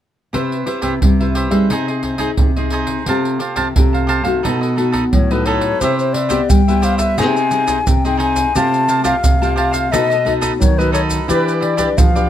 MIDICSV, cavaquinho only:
0, 0, Header, 1, 2, 480
1, 0, Start_track
1, 0, Tempo, 684307
1, 240, Time_signature, 4, 2, 24, 8
1, 8624, End_track
2, 0, Start_track
2, 0, Title_t, "Cavaquinho"
2, 0, Program_c, 0, 24
2, 231, Note_on_c, 0, 67, 55
2, 238, Note_on_c, 0, 71, 64
2, 238, Note_on_c, 0, 72, 63
2, 245, Note_on_c, 0, 76, 63
2, 454, Note_off_c, 0, 67, 0
2, 463, Note_off_c, 0, 71, 0
2, 463, Note_off_c, 0, 72, 0
2, 463, Note_on_c, 0, 67, 39
2, 469, Note_off_c, 0, 76, 0
2, 471, Note_on_c, 0, 71, 44
2, 471, Note_on_c, 0, 72, 44
2, 477, Note_on_c, 0, 76, 41
2, 564, Note_off_c, 0, 67, 0
2, 570, Note_off_c, 0, 72, 0
2, 572, Note_on_c, 0, 67, 63
2, 573, Note_off_c, 0, 71, 0
2, 576, Note_off_c, 0, 76, 0
2, 578, Note_on_c, 0, 72, 60
2, 581, Note_on_c, 0, 71, 58
2, 584, Note_on_c, 0, 76, 74
2, 649, Note_off_c, 0, 67, 0
2, 652, Note_off_c, 0, 72, 0
2, 654, Note_off_c, 0, 71, 0
2, 655, Note_off_c, 0, 76, 0
2, 844, Note_on_c, 0, 76, 35
2, 851, Note_on_c, 0, 71, 31
2, 857, Note_on_c, 0, 72, 30
2, 942, Note_off_c, 0, 72, 0
2, 945, Note_off_c, 0, 71, 0
2, 946, Note_on_c, 0, 67, 58
2, 950, Note_off_c, 0, 76, 0
2, 950, Note_on_c, 0, 72, 62
2, 954, Note_on_c, 0, 71, 55
2, 958, Note_on_c, 0, 76, 64
2, 1049, Note_off_c, 0, 76, 0
2, 1057, Note_off_c, 0, 71, 0
2, 1058, Note_on_c, 0, 76, 41
2, 1063, Note_off_c, 0, 67, 0
2, 1063, Note_off_c, 0, 72, 0
2, 1065, Note_on_c, 0, 71, 39
2, 1071, Note_on_c, 0, 72, 39
2, 1179, Note_off_c, 0, 76, 0
2, 1183, Note_off_c, 0, 71, 0
2, 1186, Note_off_c, 0, 72, 0
2, 1195, Note_on_c, 0, 63, 67
2, 1204, Note_on_c, 0, 68, 61
2, 1206, Note_on_c, 0, 72, 64
2, 1213, Note_on_c, 0, 75, 67
2, 1308, Note_off_c, 0, 63, 0
2, 1311, Note_off_c, 0, 75, 0
2, 1312, Note_off_c, 0, 68, 0
2, 1313, Note_off_c, 0, 72, 0
2, 1319, Note_on_c, 0, 75, 44
2, 1323, Note_on_c, 0, 72, 38
2, 1331, Note_on_c, 0, 68, 35
2, 1417, Note_off_c, 0, 68, 0
2, 1422, Note_off_c, 0, 72, 0
2, 1422, Note_on_c, 0, 63, 35
2, 1425, Note_on_c, 0, 68, 35
2, 1427, Note_off_c, 0, 75, 0
2, 1430, Note_on_c, 0, 72, 43
2, 1435, Note_on_c, 0, 75, 42
2, 1524, Note_off_c, 0, 63, 0
2, 1527, Note_off_c, 0, 68, 0
2, 1529, Note_off_c, 0, 72, 0
2, 1532, Note_off_c, 0, 75, 0
2, 1532, Note_on_c, 0, 63, 58
2, 1536, Note_on_c, 0, 68, 60
2, 1537, Note_on_c, 0, 72, 62
2, 1541, Note_on_c, 0, 75, 67
2, 1609, Note_off_c, 0, 63, 0
2, 1611, Note_off_c, 0, 68, 0
2, 1612, Note_off_c, 0, 72, 0
2, 1614, Note_off_c, 0, 75, 0
2, 1799, Note_on_c, 0, 75, 43
2, 1807, Note_on_c, 0, 72, 35
2, 1813, Note_on_c, 0, 68, 33
2, 1904, Note_off_c, 0, 68, 0
2, 1905, Note_on_c, 0, 63, 61
2, 1906, Note_off_c, 0, 72, 0
2, 1910, Note_off_c, 0, 75, 0
2, 1913, Note_on_c, 0, 68, 72
2, 1914, Note_on_c, 0, 72, 75
2, 1919, Note_on_c, 0, 75, 77
2, 2143, Note_off_c, 0, 63, 0
2, 2147, Note_off_c, 0, 68, 0
2, 2148, Note_off_c, 0, 72, 0
2, 2150, Note_off_c, 0, 75, 0
2, 2156, Note_on_c, 0, 67, 60
2, 2159, Note_on_c, 0, 72, 63
2, 2164, Note_on_c, 0, 77, 68
2, 2168, Note_on_c, 0, 81, 60
2, 2371, Note_off_c, 0, 67, 0
2, 2374, Note_off_c, 0, 72, 0
2, 2380, Note_on_c, 0, 67, 44
2, 2382, Note_on_c, 0, 72, 44
2, 2383, Note_off_c, 0, 77, 0
2, 2385, Note_off_c, 0, 81, 0
2, 2391, Note_on_c, 0, 77, 50
2, 2393, Note_on_c, 0, 81, 44
2, 2486, Note_off_c, 0, 67, 0
2, 2488, Note_off_c, 0, 72, 0
2, 2491, Note_off_c, 0, 77, 0
2, 2495, Note_off_c, 0, 81, 0
2, 2495, Note_on_c, 0, 67, 57
2, 2496, Note_on_c, 0, 72, 61
2, 2500, Note_on_c, 0, 77, 63
2, 2503, Note_on_c, 0, 81, 72
2, 2571, Note_off_c, 0, 67, 0
2, 2571, Note_off_c, 0, 72, 0
2, 2573, Note_off_c, 0, 77, 0
2, 2575, Note_off_c, 0, 81, 0
2, 2756, Note_on_c, 0, 81, 38
2, 2763, Note_on_c, 0, 77, 33
2, 2764, Note_on_c, 0, 72, 27
2, 2854, Note_on_c, 0, 67, 64
2, 2855, Note_off_c, 0, 72, 0
2, 2858, Note_off_c, 0, 77, 0
2, 2861, Note_off_c, 0, 81, 0
2, 2863, Note_on_c, 0, 72, 62
2, 2866, Note_on_c, 0, 77, 71
2, 2870, Note_on_c, 0, 81, 70
2, 2962, Note_off_c, 0, 81, 0
2, 2966, Note_off_c, 0, 77, 0
2, 2971, Note_on_c, 0, 81, 47
2, 2974, Note_off_c, 0, 72, 0
2, 2974, Note_on_c, 0, 77, 42
2, 2978, Note_off_c, 0, 67, 0
2, 2983, Note_on_c, 0, 72, 36
2, 3096, Note_off_c, 0, 81, 0
2, 3098, Note_off_c, 0, 77, 0
2, 3102, Note_off_c, 0, 72, 0
2, 3107, Note_on_c, 0, 63, 58
2, 3114, Note_on_c, 0, 69, 67
2, 3118, Note_on_c, 0, 71, 69
2, 3122, Note_on_c, 0, 75, 64
2, 3224, Note_off_c, 0, 63, 0
2, 3225, Note_off_c, 0, 75, 0
2, 3227, Note_off_c, 0, 69, 0
2, 3230, Note_off_c, 0, 71, 0
2, 3233, Note_on_c, 0, 75, 45
2, 3238, Note_on_c, 0, 71, 43
2, 3248, Note_on_c, 0, 69, 36
2, 3336, Note_off_c, 0, 69, 0
2, 3339, Note_on_c, 0, 63, 39
2, 3342, Note_off_c, 0, 71, 0
2, 3343, Note_off_c, 0, 75, 0
2, 3345, Note_on_c, 0, 69, 42
2, 3350, Note_on_c, 0, 71, 43
2, 3351, Note_on_c, 0, 75, 47
2, 3444, Note_off_c, 0, 69, 0
2, 3446, Note_off_c, 0, 63, 0
2, 3447, Note_off_c, 0, 71, 0
2, 3452, Note_off_c, 0, 75, 0
2, 3452, Note_on_c, 0, 69, 55
2, 3454, Note_on_c, 0, 63, 57
2, 3455, Note_on_c, 0, 71, 58
2, 3461, Note_on_c, 0, 75, 66
2, 3530, Note_off_c, 0, 63, 0
2, 3530, Note_off_c, 0, 69, 0
2, 3531, Note_off_c, 0, 71, 0
2, 3534, Note_off_c, 0, 75, 0
2, 3723, Note_on_c, 0, 75, 43
2, 3728, Note_on_c, 0, 71, 37
2, 3735, Note_on_c, 0, 69, 37
2, 3827, Note_off_c, 0, 69, 0
2, 3831, Note_on_c, 0, 63, 69
2, 3832, Note_off_c, 0, 71, 0
2, 3832, Note_off_c, 0, 75, 0
2, 3836, Note_on_c, 0, 69, 81
2, 3840, Note_on_c, 0, 71, 71
2, 3844, Note_on_c, 0, 75, 66
2, 4066, Note_off_c, 0, 63, 0
2, 4068, Note_off_c, 0, 69, 0
2, 4071, Note_off_c, 0, 71, 0
2, 4072, Note_off_c, 0, 75, 0
2, 4081, Note_on_c, 0, 67, 65
2, 4088, Note_on_c, 0, 72, 70
2, 4092, Note_on_c, 0, 71, 60
2, 4096, Note_on_c, 0, 76, 72
2, 4304, Note_off_c, 0, 67, 0
2, 4306, Note_off_c, 0, 72, 0
2, 4308, Note_off_c, 0, 71, 0
2, 4312, Note_on_c, 0, 67, 45
2, 4314, Note_on_c, 0, 72, 47
2, 4317, Note_on_c, 0, 71, 50
2, 4318, Note_off_c, 0, 76, 0
2, 4325, Note_on_c, 0, 76, 49
2, 4403, Note_off_c, 0, 67, 0
2, 4404, Note_off_c, 0, 72, 0
2, 4411, Note_off_c, 0, 71, 0
2, 4411, Note_on_c, 0, 67, 59
2, 4412, Note_off_c, 0, 76, 0
2, 4413, Note_on_c, 0, 72, 63
2, 4420, Note_on_c, 0, 71, 63
2, 4420, Note_on_c, 0, 76, 74
2, 4489, Note_off_c, 0, 67, 0
2, 4490, Note_off_c, 0, 72, 0
2, 4493, Note_off_c, 0, 71, 0
2, 4494, Note_off_c, 0, 76, 0
2, 4686, Note_on_c, 0, 76, 43
2, 4690, Note_on_c, 0, 71, 39
2, 4700, Note_on_c, 0, 72, 34
2, 4779, Note_off_c, 0, 72, 0
2, 4784, Note_on_c, 0, 67, 64
2, 4786, Note_off_c, 0, 71, 0
2, 4787, Note_on_c, 0, 72, 66
2, 4789, Note_off_c, 0, 76, 0
2, 4794, Note_on_c, 0, 71, 68
2, 4797, Note_on_c, 0, 76, 64
2, 4888, Note_off_c, 0, 76, 0
2, 4895, Note_off_c, 0, 71, 0
2, 4896, Note_on_c, 0, 76, 49
2, 4901, Note_off_c, 0, 72, 0
2, 4903, Note_off_c, 0, 67, 0
2, 4903, Note_on_c, 0, 71, 48
2, 4909, Note_on_c, 0, 72, 37
2, 5019, Note_off_c, 0, 76, 0
2, 5022, Note_off_c, 0, 71, 0
2, 5025, Note_off_c, 0, 72, 0
2, 5037, Note_on_c, 0, 63, 66
2, 5042, Note_on_c, 0, 68, 75
2, 5045, Note_on_c, 0, 72, 80
2, 5049, Note_on_c, 0, 75, 70
2, 5149, Note_off_c, 0, 63, 0
2, 5152, Note_off_c, 0, 68, 0
2, 5153, Note_off_c, 0, 72, 0
2, 5155, Note_off_c, 0, 75, 0
2, 5164, Note_on_c, 0, 75, 42
2, 5174, Note_on_c, 0, 72, 41
2, 5180, Note_on_c, 0, 68, 41
2, 5264, Note_off_c, 0, 68, 0
2, 5265, Note_on_c, 0, 63, 36
2, 5267, Note_off_c, 0, 72, 0
2, 5272, Note_on_c, 0, 68, 42
2, 5273, Note_off_c, 0, 75, 0
2, 5275, Note_on_c, 0, 72, 43
2, 5280, Note_on_c, 0, 75, 40
2, 5369, Note_off_c, 0, 63, 0
2, 5375, Note_off_c, 0, 68, 0
2, 5376, Note_off_c, 0, 72, 0
2, 5377, Note_off_c, 0, 75, 0
2, 5378, Note_on_c, 0, 63, 59
2, 5384, Note_on_c, 0, 68, 61
2, 5385, Note_on_c, 0, 72, 63
2, 5386, Note_on_c, 0, 75, 69
2, 5452, Note_off_c, 0, 63, 0
2, 5455, Note_off_c, 0, 68, 0
2, 5456, Note_off_c, 0, 72, 0
2, 5456, Note_off_c, 0, 75, 0
2, 5644, Note_on_c, 0, 75, 39
2, 5651, Note_on_c, 0, 72, 43
2, 5655, Note_on_c, 0, 68, 34
2, 5733, Note_off_c, 0, 68, 0
2, 5733, Note_on_c, 0, 63, 75
2, 5736, Note_off_c, 0, 72, 0
2, 5740, Note_off_c, 0, 75, 0
2, 5741, Note_on_c, 0, 68, 65
2, 5744, Note_on_c, 0, 72, 77
2, 5748, Note_on_c, 0, 75, 75
2, 5977, Note_off_c, 0, 63, 0
2, 5981, Note_off_c, 0, 68, 0
2, 5983, Note_off_c, 0, 72, 0
2, 5985, Note_off_c, 0, 75, 0
2, 5999, Note_on_c, 0, 67, 62
2, 6004, Note_on_c, 0, 72, 63
2, 6009, Note_on_c, 0, 81, 70
2, 6010, Note_on_c, 0, 77, 70
2, 6222, Note_off_c, 0, 67, 0
2, 6225, Note_off_c, 0, 72, 0
2, 6230, Note_on_c, 0, 67, 48
2, 6231, Note_off_c, 0, 77, 0
2, 6233, Note_on_c, 0, 72, 47
2, 6235, Note_off_c, 0, 81, 0
2, 6239, Note_on_c, 0, 77, 50
2, 6246, Note_on_c, 0, 81, 51
2, 6332, Note_off_c, 0, 67, 0
2, 6333, Note_off_c, 0, 72, 0
2, 6336, Note_off_c, 0, 77, 0
2, 6337, Note_off_c, 0, 81, 0
2, 6340, Note_on_c, 0, 67, 66
2, 6341, Note_on_c, 0, 72, 66
2, 6344, Note_on_c, 0, 77, 70
2, 6346, Note_on_c, 0, 81, 72
2, 6414, Note_off_c, 0, 67, 0
2, 6414, Note_off_c, 0, 72, 0
2, 6416, Note_off_c, 0, 77, 0
2, 6416, Note_off_c, 0, 81, 0
2, 6606, Note_on_c, 0, 81, 40
2, 6614, Note_on_c, 0, 77, 36
2, 6620, Note_on_c, 0, 72, 33
2, 6700, Note_off_c, 0, 72, 0
2, 6704, Note_off_c, 0, 77, 0
2, 6704, Note_on_c, 0, 67, 63
2, 6708, Note_on_c, 0, 72, 66
2, 6709, Note_off_c, 0, 81, 0
2, 6712, Note_on_c, 0, 77, 61
2, 6717, Note_on_c, 0, 81, 70
2, 6805, Note_off_c, 0, 81, 0
2, 6812, Note_off_c, 0, 77, 0
2, 6814, Note_on_c, 0, 81, 47
2, 6820, Note_off_c, 0, 72, 0
2, 6821, Note_on_c, 0, 77, 44
2, 6822, Note_off_c, 0, 67, 0
2, 6828, Note_on_c, 0, 72, 37
2, 6937, Note_off_c, 0, 81, 0
2, 6941, Note_off_c, 0, 77, 0
2, 6945, Note_off_c, 0, 72, 0
2, 6956, Note_on_c, 0, 63, 58
2, 6960, Note_on_c, 0, 69, 68
2, 6965, Note_on_c, 0, 71, 72
2, 6969, Note_on_c, 0, 75, 75
2, 7069, Note_off_c, 0, 63, 0
2, 7071, Note_off_c, 0, 69, 0
2, 7073, Note_off_c, 0, 71, 0
2, 7075, Note_off_c, 0, 75, 0
2, 7085, Note_on_c, 0, 75, 44
2, 7093, Note_on_c, 0, 71, 41
2, 7098, Note_on_c, 0, 69, 40
2, 7187, Note_off_c, 0, 69, 0
2, 7189, Note_on_c, 0, 63, 37
2, 7191, Note_off_c, 0, 71, 0
2, 7193, Note_off_c, 0, 75, 0
2, 7195, Note_on_c, 0, 69, 42
2, 7199, Note_on_c, 0, 71, 43
2, 7206, Note_on_c, 0, 75, 43
2, 7295, Note_off_c, 0, 63, 0
2, 7296, Note_off_c, 0, 69, 0
2, 7298, Note_off_c, 0, 71, 0
2, 7301, Note_off_c, 0, 75, 0
2, 7304, Note_on_c, 0, 63, 65
2, 7304, Note_on_c, 0, 69, 73
2, 7306, Note_on_c, 0, 71, 65
2, 7309, Note_on_c, 0, 75, 74
2, 7375, Note_off_c, 0, 63, 0
2, 7375, Note_off_c, 0, 69, 0
2, 7377, Note_off_c, 0, 71, 0
2, 7378, Note_off_c, 0, 75, 0
2, 7566, Note_on_c, 0, 75, 47
2, 7570, Note_on_c, 0, 71, 38
2, 7581, Note_on_c, 0, 69, 39
2, 7659, Note_off_c, 0, 69, 0
2, 7662, Note_on_c, 0, 63, 68
2, 7663, Note_off_c, 0, 71, 0
2, 7667, Note_on_c, 0, 69, 71
2, 7669, Note_off_c, 0, 75, 0
2, 7671, Note_on_c, 0, 71, 80
2, 7677, Note_on_c, 0, 75, 82
2, 7902, Note_off_c, 0, 63, 0
2, 7904, Note_off_c, 0, 69, 0
2, 7906, Note_off_c, 0, 71, 0
2, 7909, Note_off_c, 0, 75, 0
2, 7913, Note_on_c, 0, 64, 70
2, 7918, Note_on_c, 0, 67, 68
2, 7920, Note_on_c, 0, 71, 77
2, 7926, Note_on_c, 0, 74, 68
2, 8133, Note_off_c, 0, 64, 0
2, 8138, Note_off_c, 0, 67, 0
2, 8141, Note_on_c, 0, 64, 49
2, 8142, Note_off_c, 0, 71, 0
2, 8147, Note_off_c, 0, 74, 0
2, 8147, Note_on_c, 0, 67, 48
2, 8150, Note_on_c, 0, 71, 45
2, 8155, Note_on_c, 0, 74, 51
2, 8248, Note_off_c, 0, 64, 0
2, 8252, Note_off_c, 0, 67, 0
2, 8255, Note_off_c, 0, 71, 0
2, 8257, Note_on_c, 0, 64, 63
2, 8259, Note_off_c, 0, 74, 0
2, 8260, Note_on_c, 0, 67, 63
2, 8264, Note_on_c, 0, 71, 68
2, 8268, Note_on_c, 0, 74, 77
2, 8332, Note_off_c, 0, 64, 0
2, 8334, Note_off_c, 0, 67, 0
2, 8335, Note_off_c, 0, 71, 0
2, 8337, Note_off_c, 0, 74, 0
2, 8525, Note_on_c, 0, 74, 42
2, 8532, Note_on_c, 0, 71, 34
2, 8536, Note_on_c, 0, 67, 34
2, 8624, Note_off_c, 0, 67, 0
2, 8624, Note_off_c, 0, 71, 0
2, 8624, Note_off_c, 0, 74, 0
2, 8624, End_track
0, 0, End_of_file